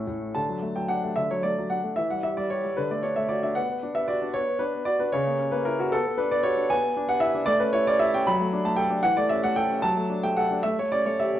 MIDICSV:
0, 0, Header, 1, 2, 480
1, 0, Start_track
1, 0, Key_signature, 2, "major"
1, 0, Tempo, 537634
1, 321, Time_signature, 6, 3, 24, 8
1, 3190, Tempo, 521286
1, 8950, Tempo, 550964
1, 10318, End_track
2, 0, Start_track
2, 0, Title_t, "Grand piano"
2, 0, Program_c, 0, 0
2, 0, Control_c, 0, 64, 127
2, 0, Note_on_c, 0, 45, 53
2, 0, Note_on_c, 0, 57, 49
2, 0, Note_on_c, 0, 61, 50
2, 0, Note_on_c, 0, 69, 82
2, 64, Note_off_c, 0, 45, 0
2, 64, Note_on_c, 0, 45, 53
2, 286, Note_off_c, 0, 61, 0
2, 288, Note_off_c, 0, 57, 0
2, 308, Note_on_c, 0, 81, 71
2, 309, Note_off_c, 0, 45, 0
2, 315, Note_on_c, 0, 50, 53
2, 331, Control_c, 0, 64, 0
2, 337, Note_off_c, 0, 69, 0
2, 438, Note_on_c, 0, 54, 35
2, 483, Control_c, 0, 64, 127
2, 555, Note_on_c, 0, 57, 38
2, 634, Note_off_c, 0, 54, 0
2, 675, Note_on_c, 0, 79, 58
2, 677, Note_off_c, 0, 81, 0
2, 680, Note_on_c, 0, 54, 35
2, 752, Note_off_c, 0, 57, 0
2, 789, Note_on_c, 0, 78, 67
2, 800, Note_off_c, 0, 79, 0
2, 801, Note_on_c, 0, 62, 40
2, 875, Note_off_c, 0, 54, 0
2, 924, Note_on_c, 0, 57, 38
2, 995, Note_off_c, 0, 62, 0
2, 1031, Note_off_c, 0, 50, 0
2, 1034, Note_on_c, 0, 76, 74
2, 1037, Note_off_c, 0, 78, 0
2, 1044, Note_on_c, 0, 50, 46
2, 1057, Control_c, 0, 64, 0
2, 1116, Note_off_c, 0, 57, 0
2, 1159, Note_off_c, 0, 76, 0
2, 1168, Note_on_c, 0, 73, 62
2, 1171, Note_on_c, 0, 54, 37
2, 1277, Note_on_c, 0, 74, 63
2, 1285, Note_off_c, 0, 73, 0
2, 1289, Note_on_c, 0, 57, 38
2, 1358, Note_off_c, 0, 54, 0
2, 1415, Note_on_c, 0, 54, 41
2, 1477, Note_off_c, 0, 57, 0
2, 1516, Note_on_c, 0, 78, 66
2, 1518, Note_off_c, 0, 74, 0
2, 1527, Note_on_c, 0, 62, 41
2, 1599, Note_off_c, 0, 54, 0
2, 1641, Note_on_c, 0, 57, 36
2, 1715, Note_off_c, 0, 62, 0
2, 1739, Note_off_c, 0, 50, 0
2, 1750, Note_on_c, 0, 76, 71
2, 1758, Note_off_c, 0, 78, 0
2, 1760, Note_off_c, 0, 57, 0
2, 1763, Note_on_c, 0, 52, 51
2, 1875, Note_off_c, 0, 76, 0
2, 1879, Note_on_c, 0, 78, 56
2, 1886, Note_on_c, 0, 55, 34
2, 1932, Control_c, 0, 64, 127
2, 1993, Note_on_c, 0, 76, 66
2, 1999, Note_off_c, 0, 78, 0
2, 2001, Note_on_c, 0, 67, 38
2, 2074, Note_off_c, 0, 55, 0
2, 2115, Note_on_c, 0, 74, 64
2, 2116, Note_off_c, 0, 76, 0
2, 2118, Note_on_c, 0, 55, 41
2, 2191, Note_off_c, 0, 67, 0
2, 2231, Note_on_c, 0, 73, 65
2, 2236, Note_off_c, 0, 74, 0
2, 2242, Note_on_c, 0, 67, 41
2, 2308, Note_off_c, 0, 55, 0
2, 2358, Note_on_c, 0, 55, 39
2, 2430, Note_off_c, 0, 67, 0
2, 2455, Note_off_c, 0, 52, 0
2, 2468, Note_on_c, 0, 71, 71
2, 2472, Note_off_c, 0, 73, 0
2, 2476, Note_off_c, 0, 55, 0
2, 2480, Note_on_c, 0, 50, 55
2, 2488, Control_c, 0, 64, 0
2, 2591, Note_off_c, 0, 71, 0
2, 2595, Note_on_c, 0, 57, 40
2, 2596, Note_on_c, 0, 74, 59
2, 2674, Control_c, 0, 64, 127
2, 2703, Note_on_c, 0, 73, 64
2, 2712, Note_on_c, 0, 62, 39
2, 2715, Note_off_c, 0, 74, 0
2, 2786, Note_off_c, 0, 57, 0
2, 2820, Note_on_c, 0, 76, 64
2, 2827, Note_on_c, 0, 57, 41
2, 2828, Note_off_c, 0, 73, 0
2, 2904, Note_off_c, 0, 62, 0
2, 2933, Note_on_c, 0, 74, 69
2, 2943, Note_on_c, 0, 66, 42
2, 2946, Note_off_c, 0, 76, 0
2, 3021, Note_off_c, 0, 57, 0
2, 3061, Note_on_c, 0, 76, 61
2, 3062, Note_off_c, 0, 74, 0
2, 3065, Note_on_c, 0, 62, 40
2, 3139, Note_off_c, 0, 66, 0
2, 3169, Note_on_c, 0, 78, 71
2, 3172, Note_off_c, 0, 50, 0
2, 3181, Note_on_c, 0, 59, 54
2, 3185, Note_off_c, 0, 76, 0
2, 3188, Note_off_c, 0, 62, 0
2, 3200, Control_c, 0, 64, 0
2, 3287, Note_off_c, 0, 59, 0
2, 3301, Note_on_c, 0, 59, 38
2, 3358, Control_c, 0, 64, 127
2, 3425, Note_on_c, 0, 62, 41
2, 3501, Note_off_c, 0, 59, 0
2, 3535, Note_on_c, 0, 76, 69
2, 3539, Note_on_c, 0, 59, 42
2, 3544, Note_off_c, 0, 78, 0
2, 3623, Note_off_c, 0, 62, 0
2, 3655, Note_on_c, 0, 74, 67
2, 3662, Note_on_c, 0, 66, 45
2, 3666, Note_off_c, 0, 76, 0
2, 3740, Note_off_c, 0, 59, 0
2, 3785, Note_on_c, 0, 62, 43
2, 3861, Note_off_c, 0, 66, 0
2, 3893, Note_on_c, 0, 73, 77
2, 3905, Note_off_c, 0, 74, 0
2, 3905, Note_on_c, 0, 59, 51
2, 3926, Control_c, 0, 64, 0
2, 3982, Note_off_c, 0, 62, 0
2, 4009, Note_off_c, 0, 59, 0
2, 4023, Note_on_c, 0, 59, 45
2, 4126, Note_on_c, 0, 71, 75
2, 4136, Note_on_c, 0, 62, 44
2, 4144, Note_off_c, 0, 73, 0
2, 4221, Note_off_c, 0, 59, 0
2, 4262, Note_on_c, 0, 59, 47
2, 4338, Note_off_c, 0, 62, 0
2, 4368, Note_on_c, 0, 74, 75
2, 4378, Note_on_c, 0, 66, 49
2, 4381, Note_off_c, 0, 71, 0
2, 4461, Note_off_c, 0, 59, 0
2, 4499, Note_on_c, 0, 71, 62
2, 4502, Note_off_c, 0, 74, 0
2, 4502, Note_on_c, 0, 62, 41
2, 4580, Note_off_c, 0, 66, 0
2, 4618, Note_on_c, 0, 73, 78
2, 4628, Note_off_c, 0, 71, 0
2, 4628, Note_on_c, 0, 49, 63
2, 4630, Note_off_c, 0, 62, 0
2, 4752, Note_on_c, 0, 58, 39
2, 4823, Control_c, 0, 64, 127
2, 4863, Note_on_c, 0, 61, 45
2, 4948, Note_off_c, 0, 58, 0
2, 4979, Note_on_c, 0, 71, 70
2, 4987, Note_on_c, 0, 58, 48
2, 4989, Note_off_c, 0, 73, 0
2, 5064, Note_off_c, 0, 61, 0
2, 5104, Note_on_c, 0, 70, 74
2, 5110, Note_off_c, 0, 71, 0
2, 5119, Note_on_c, 0, 64, 50
2, 5186, Note_off_c, 0, 58, 0
2, 5232, Note_off_c, 0, 70, 0
2, 5239, Note_on_c, 0, 66, 69
2, 5244, Note_on_c, 0, 61, 48
2, 5312, Note_off_c, 0, 64, 0
2, 5334, Note_off_c, 0, 49, 0
2, 5353, Note_on_c, 0, 69, 81
2, 5360, Note_off_c, 0, 66, 0
2, 5362, Note_off_c, 0, 61, 0
2, 5366, Note_on_c, 0, 59, 70
2, 5372, Control_c, 0, 64, 0
2, 5474, Note_off_c, 0, 59, 0
2, 5488, Note_on_c, 0, 59, 49
2, 5557, Control_c, 0, 64, 127
2, 5588, Note_on_c, 0, 71, 77
2, 5595, Note_off_c, 0, 69, 0
2, 5600, Note_on_c, 0, 62, 52
2, 5674, Note_off_c, 0, 59, 0
2, 5712, Note_off_c, 0, 71, 0
2, 5716, Note_on_c, 0, 59, 51
2, 5716, Note_on_c, 0, 74, 80
2, 5790, Note_off_c, 0, 62, 0
2, 5824, Note_on_c, 0, 73, 84
2, 5834, Note_on_c, 0, 66, 50
2, 5836, Note_off_c, 0, 74, 0
2, 5908, Note_off_c, 0, 59, 0
2, 5951, Note_on_c, 0, 62, 44
2, 6026, Note_off_c, 0, 66, 0
2, 6069, Note_off_c, 0, 73, 0
2, 6070, Note_on_c, 0, 80, 97
2, 6073, Note_off_c, 0, 62, 0
2, 6081, Note_on_c, 0, 59, 65
2, 6085, Control_c, 0, 64, 0
2, 6179, Note_off_c, 0, 59, 0
2, 6193, Note_on_c, 0, 59, 50
2, 6233, Control_c, 0, 64, 127
2, 6316, Note_on_c, 0, 62, 53
2, 6384, Note_off_c, 0, 59, 0
2, 6425, Note_on_c, 0, 78, 86
2, 6429, Note_off_c, 0, 80, 0
2, 6429, Note_on_c, 0, 59, 51
2, 6505, Note_off_c, 0, 62, 0
2, 6531, Note_on_c, 0, 76, 92
2, 6536, Note_on_c, 0, 64, 55
2, 6548, Note_off_c, 0, 78, 0
2, 6621, Note_off_c, 0, 59, 0
2, 6663, Note_on_c, 0, 62, 51
2, 6735, Note_off_c, 0, 64, 0
2, 6765, Note_on_c, 0, 74, 102
2, 6777, Note_on_c, 0, 57, 69
2, 6781, Note_off_c, 0, 76, 0
2, 6787, Note_off_c, 0, 62, 0
2, 6802, Control_c, 0, 64, 0
2, 6893, Note_on_c, 0, 71, 81
2, 6898, Note_off_c, 0, 74, 0
2, 6901, Note_on_c, 0, 61, 54
2, 6970, Control_c, 0, 64, 127
2, 7014, Note_on_c, 0, 73, 86
2, 7023, Note_off_c, 0, 71, 0
2, 7025, Note_on_c, 0, 64, 54
2, 7100, Note_off_c, 0, 61, 0
2, 7144, Note_off_c, 0, 73, 0
2, 7147, Note_on_c, 0, 74, 85
2, 7153, Note_on_c, 0, 61, 55
2, 7222, Note_off_c, 0, 64, 0
2, 7260, Note_on_c, 0, 76, 93
2, 7269, Note_on_c, 0, 64, 56
2, 7271, Note_off_c, 0, 74, 0
2, 7345, Note_off_c, 0, 61, 0
2, 7387, Note_off_c, 0, 76, 0
2, 7397, Note_on_c, 0, 79, 80
2, 7400, Note_on_c, 0, 61, 51
2, 7463, Note_off_c, 0, 64, 0
2, 7484, Note_off_c, 0, 57, 0
2, 7512, Note_on_c, 0, 83, 104
2, 7515, Note_off_c, 0, 79, 0
2, 7516, Note_off_c, 0, 61, 0
2, 7519, Note_on_c, 0, 54, 73
2, 7524, Control_c, 0, 64, 0
2, 7639, Note_on_c, 0, 57, 45
2, 7707, Control_c, 0, 64, 127
2, 7752, Note_on_c, 0, 62, 53
2, 7826, Note_off_c, 0, 57, 0
2, 7865, Note_on_c, 0, 81, 75
2, 7867, Note_on_c, 0, 57, 51
2, 7869, Note_off_c, 0, 83, 0
2, 7942, Note_off_c, 0, 62, 0
2, 7970, Note_on_c, 0, 79, 87
2, 7979, Note_on_c, 0, 69, 54
2, 7986, Note_off_c, 0, 81, 0
2, 8059, Note_off_c, 0, 57, 0
2, 8098, Note_on_c, 0, 62, 49
2, 8174, Note_off_c, 0, 69, 0
2, 8208, Note_off_c, 0, 54, 0
2, 8213, Note_on_c, 0, 78, 102
2, 8217, Note_off_c, 0, 79, 0
2, 8222, Note_off_c, 0, 62, 0
2, 8222, Note_on_c, 0, 52, 67
2, 8233, Control_c, 0, 64, 0
2, 8339, Note_off_c, 0, 78, 0
2, 8342, Note_on_c, 0, 74, 81
2, 8349, Note_on_c, 0, 57, 52
2, 8430, Control_c, 0, 64, 127
2, 8458, Note_on_c, 0, 76, 82
2, 8464, Note_off_c, 0, 74, 0
2, 8472, Note_on_c, 0, 61, 52
2, 8539, Note_off_c, 0, 57, 0
2, 8582, Note_off_c, 0, 76, 0
2, 8587, Note_on_c, 0, 78, 83
2, 8590, Note_on_c, 0, 57, 52
2, 8662, Note_off_c, 0, 61, 0
2, 8703, Note_on_c, 0, 79, 91
2, 8708, Note_off_c, 0, 78, 0
2, 8711, Note_on_c, 0, 69, 53
2, 8782, Note_off_c, 0, 57, 0
2, 8838, Note_on_c, 0, 61, 47
2, 8905, Note_off_c, 0, 69, 0
2, 8929, Note_off_c, 0, 52, 0
2, 8944, Note_on_c, 0, 81, 95
2, 8951, Note_off_c, 0, 79, 0
2, 8956, Note_off_c, 0, 61, 0
2, 8957, Note_on_c, 0, 54, 68
2, 8961, Control_c, 0, 64, 0
2, 9073, Note_on_c, 0, 57, 44
2, 9126, Control_c, 0, 64, 127
2, 9184, Note_on_c, 0, 62, 47
2, 9258, Note_off_c, 0, 57, 0
2, 9299, Note_off_c, 0, 81, 0
2, 9304, Note_on_c, 0, 79, 78
2, 9306, Note_on_c, 0, 57, 48
2, 9373, Note_off_c, 0, 62, 0
2, 9418, Note_on_c, 0, 78, 82
2, 9421, Note_off_c, 0, 79, 0
2, 9426, Note_on_c, 0, 69, 48
2, 9493, Note_off_c, 0, 57, 0
2, 9544, Note_on_c, 0, 62, 45
2, 9614, Note_off_c, 0, 69, 0
2, 9640, Note_off_c, 0, 54, 0
2, 9648, Note_on_c, 0, 76, 86
2, 9658, Note_off_c, 0, 78, 0
2, 9659, Note_on_c, 0, 57, 61
2, 9661, Note_off_c, 0, 62, 0
2, 9666, Control_c, 0, 64, 0
2, 9774, Note_off_c, 0, 76, 0
2, 9780, Note_off_c, 0, 57, 0
2, 9788, Note_on_c, 0, 73, 67
2, 9793, Note_on_c, 0, 57, 42
2, 9811, Control_c, 0, 64, 127
2, 9899, Note_on_c, 0, 74, 77
2, 9906, Note_off_c, 0, 73, 0
2, 9908, Note_on_c, 0, 61, 42
2, 9981, Note_off_c, 0, 57, 0
2, 10022, Note_on_c, 0, 73, 68
2, 10023, Note_off_c, 0, 74, 0
2, 10025, Note_on_c, 0, 57, 43
2, 10101, Note_off_c, 0, 61, 0
2, 10141, Note_on_c, 0, 76, 69
2, 10146, Note_off_c, 0, 73, 0
2, 10147, Note_on_c, 0, 67, 45
2, 10222, Note_off_c, 0, 57, 0
2, 10271, Note_on_c, 0, 61, 39
2, 10318, Note_off_c, 0, 61, 0
2, 10318, Note_off_c, 0, 67, 0
2, 10318, Note_off_c, 0, 76, 0
2, 10318, End_track
0, 0, End_of_file